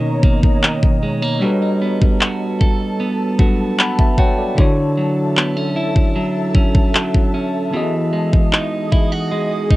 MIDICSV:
0, 0, Header, 1, 5, 480
1, 0, Start_track
1, 0, Tempo, 789474
1, 865, Time_signature, 4, 2, 24, 8
1, 5937, End_track
2, 0, Start_track
2, 0, Title_t, "Ambient pad"
2, 0, Program_c, 0, 92
2, 0, Note_on_c, 0, 73, 74
2, 0, Note_on_c, 0, 75, 74
2, 0, Note_on_c, 0, 82, 76
2, 843, Note_off_c, 0, 75, 0
2, 843, Note_off_c, 0, 82, 0
2, 844, Note_off_c, 0, 73, 0
2, 864, Note_on_c, 0, 81, 73
2, 866, Note_on_c, 0, 69, 80
2, 2765, Note_off_c, 0, 81, 0
2, 2766, Note_off_c, 0, 69, 0
2, 2787, Note_on_c, 0, 76, 72
2, 2788, Note_on_c, 0, 69, 84
2, 2788, Note_on_c, 0, 81, 87
2, 4686, Note_off_c, 0, 76, 0
2, 4687, Note_off_c, 0, 69, 0
2, 4687, Note_off_c, 0, 81, 0
2, 4701, Note_on_c, 0, 75, 78
2, 4702, Note_on_c, 0, 68, 81
2, 4702, Note_on_c, 0, 87, 88
2, 5937, Note_off_c, 0, 68, 0
2, 5937, Note_off_c, 0, 75, 0
2, 5937, Note_off_c, 0, 87, 0
2, 5937, End_track
3, 0, Start_track
3, 0, Title_t, "Tine electric piano"
3, 0, Program_c, 1, 4
3, 0, Control_c, 1, 64, 127
3, 0, Note_on_c, 1, 47, 74
3, 0, Note_on_c, 1, 59, 68
3, 0, Note_on_c, 1, 63, 67
3, 0, Note_on_c, 1, 70, 67
3, 0, Note_on_c, 1, 73, 78
3, 833, Note_off_c, 1, 47, 0
3, 837, Note_off_c, 1, 59, 0
3, 841, Note_off_c, 1, 63, 0
3, 846, Note_off_c, 1, 70, 0
3, 847, Note_on_c, 1, 55, 77
3, 850, Note_off_c, 1, 73, 0
3, 856, Note_on_c, 1, 62, 68
3, 864, Note_on_c, 1, 66, 70
3, 873, Control_c, 1, 64, 0
3, 873, Note_on_c, 1, 69, 71
3, 881, Note_on_c, 1, 71, 82
3, 962, Control_c, 1, 64, 127
3, 2031, Note_off_c, 1, 55, 0
3, 2036, Note_off_c, 1, 62, 0
3, 2040, Note_off_c, 1, 66, 0
3, 2045, Note_off_c, 1, 69, 0
3, 2049, Note_off_c, 1, 71, 0
3, 2059, Note_on_c, 1, 55, 56
3, 2063, Note_on_c, 1, 62, 50
3, 2067, Note_on_c, 1, 54, 53
3, 2072, Note_on_c, 1, 69, 51
3, 2077, Note_on_c, 1, 71, 63
3, 2306, Note_on_c, 1, 78, 71
3, 2306, Note_on_c, 1, 83, 64
3, 2308, Note_off_c, 1, 69, 0
3, 2311, Note_off_c, 1, 71, 0
3, 2419, Note_off_c, 1, 83, 0
3, 2421, Note_off_c, 1, 78, 0
3, 2426, Note_on_c, 1, 81, 70
3, 2430, Note_on_c, 1, 76, 56
3, 2539, Note_off_c, 1, 81, 0
3, 2541, Note_off_c, 1, 76, 0
3, 2545, Note_on_c, 1, 78, 65
3, 2545, Note_on_c, 1, 79, 66
3, 2549, Note_on_c, 1, 73, 57
3, 2659, Note_off_c, 1, 78, 0
3, 2661, Note_off_c, 1, 73, 0
3, 2666, Note_on_c, 1, 74, 55
3, 2669, Note_on_c, 1, 69, 47
3, 2765, Note_on_c, 1, 50, 78
3, 2767, Note_off_c, 1, 62, 0
3, 2768, Note_off_c, 1, 79, 0
3, 2775, Note_on_c, 1, 62, 66
3, 2782, Note_off_c, 1, 55, 0
3, 2783, Note_on_c, 1, 64, 73
3, 2786, Note_off_c, 1, 54, 0
3, 2791, Note_on_c, 1, 66, 68
3, 2792, Control_c, 1, 64, 0
3, 2800, Note_on_c, 1, 73, 85
3, 2893, Note_off_c, 1, 74, 0
3, 2895, Note_off_c, 1, 69, 0
3, 2910, Control_c, 1, 64, 127
3, 4671, Note_off_c, 1, 50, 0
3, 4675, Note_off_c, 1, 62, 0
3, 4680, Note_off_c, 1, 64, 0
3, 4684, Note_off_c, 1, 66, 0
3, 4688, Note_off_c, 1, 73, 0
3, 4688, Note_on_c, 1, 52, 74
3, 4697, Note_on_c, 1, 59, 66
3, 4705, Note_on_c, 1, 66, 72
3, 4711, Control_c, 1, 64, 0
3, 4714, Note_on_c, 1, 68, 66
3, 4722, Note_on_c, 1, 75, 82
3, 4819, Control_c, 1, 64, 127
3, 5937, Note_off_c, 1, 52, 0
3, 5937, Note_off_c, 1, 59, 0
3, 5937, Note_off_c, 1, 66, 0
3, 5937, Note_off_c, 1, 68, 0
3, 5937, Note_off_c, 1, 75, 0
3, 5937, End_track
4, 0, Start_track
4, 0, Title_t, "Clean electric guitar"
4, 0, Program_c, 2, 27
4, 0, Note_on_c, 2, 47, 77
4, 0, Note_on_c, 2, 51, 70
4, 0, Note_on_c, 2, 58, 59
4, 0, Note_on_c, 2, 61, 62
4, 137, Note_off_c, 2, 58, 0
4, 144, Note_on_c, 2, 58, 60
4, 377, Note_off_c, 2, 51, 0
4, 384, Note_on_c, 2, 51, 57
4, 622, Note_off_c, 2, 58, 0
4, 625, Note_on_c, 2, 56, 56
4, 743, Note_off_c, 2, 56, 0
4, 743, Note_on_c, 2, 58, 47
4, 861, Note_off_c, 2, 51, 0
4, 863, Note_on_c, 2, 55, 80
4, 864, Note_off_c, 2, 47, 0
4, 912, Note_off_c, 2, 58, 0
4, 912, Note_off_c, 2, 61, 0
4, 1104, Note_on_c, 2, 59, 57
4, 1342, Note_on_c, 2, 66, 56
4, 1585, Note_on_c, 2, 69, 62
4, 1816, Note_off_c, 2, 59, 0
4, 1823, Note_on_c, 2, 59, 64
4, 2061, Note_off_c, 2, 66, 0
4, 2064, Note_on_c, 2, 66, 62
4, 2297, Note_off_c, 2, 59, 0
4, 2304, Note_on_c, 2, 59, 58
4, 2543, Note_off_c, 2, 66, 0
4, 2545, Note_on_c, 2, 66, 55
4, 2784, Note_off_c, 2, 55, 0
4, 2785, Note_on_c, 2, 50, 79
4, 2832, Note_off_c, 2, 59, 0
4, 3024, Note_on_c, 2, 54, 58
4, 3266, Note_on_c, 2, 59, 56
4, 3284, Note_off_c, 2, 69, 0
4, 3385, Note_off_c, 2, 59, 0
4, 3385, Note_on_c, 2, 61, 53
4, 3501, Note_off_c, 2, 66, 0
4, 3503, Note_on_c, 2, 64, 67
4, 3740, Note_off_c, 2, 54, 0
4, 3743, Note_on_c, 2, 54, 66
4, 3975, Note_off_c, 2, 61, 0
4, 3983, Note_on_c, 2, 61, 61
4, 4218, Note_off_c, 2, 54, 0
4, 4221, Note_on_c, 2, 54, 62
4, 4456, Note_off_c, 2, 61, 0
4, 4463, Note_on_c, 2, 61, 57
4, 4700, Note_off_c, 2, 54, 0
4, 4702, Note_on_c, 2, 52, 78
4, 4705, Note_off_c, 2, 50, 0
4, 4752, Note_off_c, 2, 61, 0
4, 4942, Note_on_c, 2, 56, 57
4, 5180, Note_off_c, 2, 64, 0
4, 5183, Note_on_c, 2, 63, 58
4, 5423, Note_on_c, 2, 64, 62
4, 5545, Note_off_c, 2, 64, 0
4, 5545, Note_on_c, 2, 66, 53
4, 5656, Note_off_c, 2, 56, 0
4, 5664, Note_on_c, 2, 56, 65
4, 5900, Note_off_c, 2, 63, 0
4, 5902, Note_on_c, 2, 63, 58
4, 5937, Note_off_c, 2, 52, 0
4, 5937, Note_off_c, 2, 56, 0
4, 5937, Note_off_c, 2, 63, 0
4, 5937, Note_off_c, 2, 66, 0
4, 5937, End_track
5, 0, Start_track
5, 0, Title_t, "Drums"
5, 140, Note_on_c, 9, 36, 97
5, 201, Note_off_c, 9, 36, 0
5, 263, Note_on_c, 9, 36, 96
5, 323, Note_off_c, 9, 36, 0
5, 385, Note_on_c, 9, 39, 103
5, 446, Note_off_c, 9, 39, 0
5, 504, Note_on_c, 9, 36, 94
5, 565, Note_off_c, 9, 36, 0
5, 1226, Note_on_c, 9, 36, 88
5, 1287, Note_off_c, 9, 36, 0
5, 1345, Note_on_c, 9, 39, 105
5, 1406, Note_off_c, 9, 39, 0
5, 1586, Note_on_c, 9, 36, 87
5, 1647, Note_off_c, 9, 36, 0
5, 2061, Note_on_c, 9, 36, 96
5, 2122, Note_off_c, 9, 36, 0
5, 2306, Note_on_c, 9, 39, 100
5, 2366, Note_off_c, 9, 39, 0
5, 2424, Note_on_c, 9, 36, 100
5, 2485, Note_off_c, 9, 36, 0
5, 2541, Note_on_c, 9, 36, 91
5, 2602, Note_off_c, 9, 36, 0
5, 2785, Note_on_c, 9, 36, 98
5, 2846, Note_off_c, 9, 36, 0
5, 3265, Note_on_c, 9, 39, 106
5, 3326, Note_off_c, 9, 39, 0
5, 3623, Note_on_c, 9, 36, 89
5, 3683, Note_off_c, 9, 36, 0
5, 3981, Note_on_c, 9, 36, 100
5, 4041, Note_off_c, 9, 36, 0
5, 4103, Note_on_c, 9, 36, 96
5, 4164, Note_off_c, 9, 36, 0
5, 4225, Note_on_c, 9, 39, 106
5, 4286, Note_off_c, 9, 39, 0
5, 4344, Note_on_c, 9, 36, 94
5, 4405, Note_off_c, 9, 36, 0
5, 5066, Note_on_c, 9, 36, 91
5, 5127, Note_off_c, 9, 36, 0
5, 5185, Note_on_c, 9, 39, 99
5, 5246, Note_off_c, 9, 39, 0
5, 5425, Note_on_c, 9, 36, 87
5, 5486, Note_off_c, 9, 36, 0
5, 5901, Note_on_c, 9, 36, 99
5, 5937, Note_off_c, 9, 36, 0
5, 5937, End_track
0, 0, End_of_file